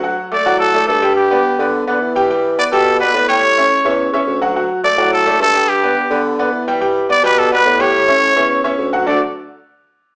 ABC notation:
X:1
M:4/4
L:1/8
Q:1/4=213
K:D
V:1 name="Trumpet"
z2 d2 A2 A2 | G4 z4 | z2 d A2 B2 c- | c6 z2 |
z2 d2 A2 A2 | G4 z4 | z2 d B A B2 c- | c6 z2 |
d z6 z |]
V:2 name="Grand piano"
[F,Ff]2 [A,Ad] [F,Ff]2 [A,Ad] [A,Ad] [G,Gg]- | [G,Gg] [B,Bd]2 [B,Bd]2 [B,Bd]2 [G,Gg] | [G,Gg]2 [B,Bd] [G,Gg]2 [B,Bd] [B,Bd] [G,Gg]- | [G,Gg] [Cce]2 [Cce]2 [Cce]2 [F,Ff] |
[F,Ff]2 [A,Ad] [F,Ff]2 [A,Ad] [A,Ad] [G,Gg]- | [G,Gg] [B,Bd]2 [B,Bd]2 [B,Bd]2 [G,Gg] | [G,Gg]2 [B,Bd] [G,Gg]2 [B,Bd] [B,Bd] [G,Gg]- | [G,Gg] [Cce]2 [Cce]2 [Cce]2 [F,Ff] |
[D,A,DFAd] z6 z |]
V:3 name="Bassoon" clef=bass
D,, z2 A,,3 G,,2- | G,,3 D,2 D, E,2- | E,3 B,,3 A,,2- | A,,3 E,,2 E,, D,,2- |
D,, z2 A,,3 G,,2- | G,,3 D,3 E,2- | E,3 B,,3 A,,2- | A,,3 E,,2 E,, D,,2 |
D,, z6 z |]